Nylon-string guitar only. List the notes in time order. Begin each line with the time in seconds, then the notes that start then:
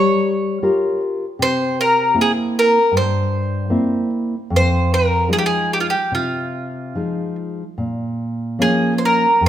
Already playing: G3
0.63 F4 G4 A#4
1.39 C3
2.14 A#3 C4 E4
2.92 G2
3.70 A#3 C4 E4
4.50 F2
5.28 F3 G#3 D#4
6.12 C3
6.95 F3 G#3 D#4
7.78 A#2
8.59 F3 A#3 C#4
9.41 F2